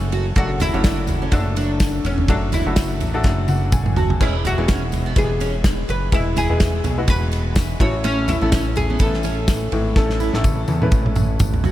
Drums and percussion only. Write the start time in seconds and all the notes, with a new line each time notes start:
0.12 ride, tambourine
0.36 kick, ride
0.60 floor tom, ride, tambourine
0.84 kick, snare, ride, tambourine
1.07 floor tom, ride, tambourine
1.32 kick, ride, tambourine
1.56 ride, tambourine
1.80 kick, snare, ride, tambourine
2.04 ride, tambourine
2.18 floor tom
2.28 kick, ride
2.52 floor tom, ride, tambourine
2.76 kick, snare, ride, tambourine
3.00 floor tom, ride, tambourine
3.24 kick, snare, tambourine
3.48 high tom, tambourine
3.72 kick, mid tom, tambourine
3.86 mid tom
3.96 floor tom, tambourine
4.10 floor tom
4.21 kick, crash
4.45 floor tom, ride, tambourine
4.68 kick, snare, ride, tambourine
4.92 floor tom, ride, tambourine
5.16 kick, ride, tambourine
5.40 ride, tambourine
5.64 kick, snare, ride, tambourine
5.89 ride, tambourine
6.12 kick, ride, tambourine
6.36 floor tom, ride, tambourine
6.60 kick, snare, ride, tambourine
6.84 floor tom, ride, tambourine
7.08 kick, ride, tambourine
7.31 ride, tambourine
7.56 kick, snare, ride, tambourine
7.80 kick, ride
8.04 ride, tambourine
8.28 floor tom, ride, tambourine
8.52 kick, snare, ride, tambourine
8.76 floor tom, ride, tambourine
8.99 kick, ride, tambourine
9.14 snare
9.23 ride, tambourine
9.48 kick, snare, ride, tambourine
9.72 ride
9.96 kick, snare, tambourine
10.09 snare
10.20 tambourine
10.34 snare
10.44 kick, high tom, tambourine
10.68 high tom, tambourine
10.82 mid tom
10.91 kick, tambourine
11.06 mid tom
11.16 mid tom, tambourine
11.39 kick, mid tom, tambourine
11.54 floor tom
11.64 floor tom, tambourine